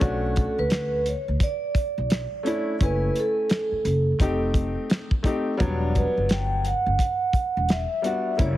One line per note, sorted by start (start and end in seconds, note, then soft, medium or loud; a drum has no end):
0.00 0.45 B1 medium
0.00 1.04 A3 medium
0.00 1.05 C#4 medium
0.00 1.05 D4 medium
0.00 1.06 F#4 loud
0.00 0.22 G4 soft
0.00 0.21 C5 medium
0.00 kick loud
0.00 closed hi-hat medium
0.36 0.60 A4 medium
0.36 kick medium
0.36 closed hi-hat medium
0.58 1.12 D2 medium
0.58 1.04 B4 medium
0.70 snare loud
0.70 closed hi-hat medium
1.06 1.24 C#5 medium
1.06 closed hi-hat medium
1.28 1.38 D2 medium
1.40 2.86 D5 medium
1.40 kick loud
1.40 closed hi-hat loud
1.75 kick medium
1.75 closed hi-hat medium
1.98 2.25 B1 medium
2.10 snare loud
2.10 closed hi-hat medium
2.43 2.73 A3 medium
2.43 2.73 C#4 medium
2.43 2.74 D4 medium
2.43 2.75 E4 medium
2.43 closed hi-hat medium
2.79 3.08 F#1 loud
2.79 3.84 A3 medium
2.79 3.85 C#4 medium
2.79 3.85 E4 medium
2.79 3.86 G#5 medium
2.79 kick loud
2.79 closed hi-hat medium
2.84 3.15 B4 medium
3.16 closed hi-hat medium
3.20 4.53 A4 medium
3.50 snare loud
3.50 closed hi-hat medium
3.72 muted upright bass stroke soft
3.85 4.12 F#1 medium
3.85 closed hi-hat medium
4.19 4.74 F1 medium
4.19 5.07 A3 medium
4.19 5.07 C4 medium
4.19 5.08 D#4 medium
4.19 5.08 G4 medium
4.19 kick medium
4.19 closed hi-hat medium
4.54 kick medium
4.54 closed hi-hat medium
4.90 snare loud
4.90 closed hi-hat medium
5.11 kick medium
5.23 5.52 A3 medium
5.23 5.53 C4 medium
5.23 5.53 D#4 medium
5.23 5.54 G4 medium
5.23 kick medium
5.23 closed hi-hat medium
5.57 6.04 E1 loud
5.57 6.64 F#3 loud
5.57 6.63 G3 loud
5.57 6.63 B3 medium
5.57 6.64 D4 medium
5.57 kick loud
5.57 closed hi-hat medium
5.95 6.29 B4 medium
5.95 kick medium
5.95 closed hi-hat medium
6.17 6.71 G1 medium
6.29 6.67 G5 loud
6.29 snare loud
6.29 closed hi-hat medium
6.65 7.74 F#5 loud
6.65 closed hi-hat medium
6.86 6.97 G1 medium
6.99 kick medium
6.99 closed hi-hat loud
7.33 kick medium
7.33 closed hi-hat medium
7.57 7.84 E1 medium
7.69 8.42 E5 medium
7.69 snare loud
7.69 closed hi-hat medium
8.02 8.31 G3 medium
8.02 8.32 B3 medium
8.02 8.32 D4 medium
8.02 8.33 F#4 medium
8.02 closed hi-hat medium
8.37 8.57 F#1 loud
8.37 8.57 G3 medium
8.37 8.57 A#3 medium
8.37 8.57 C#4 medium
8.37 8.57 E4 medium
8.37 kick loud
8.37 closed hi-hat medium
8.41 8.57 C#5 medium